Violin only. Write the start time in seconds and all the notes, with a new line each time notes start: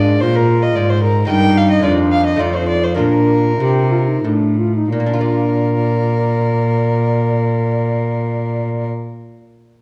Already playing: D5
0.21 C5
0.36 A#4
0.63 D#5
0.76 D5
0.90 C5
1.03 A#4
1.29 G5
1.58 F5
1.71 D#5
1.84 D5
2.12 F5
2.26 D#5
2.40 D5
2.56 C5
2.69 D5
2.84 C5
2.98 A#4
4.92 A#4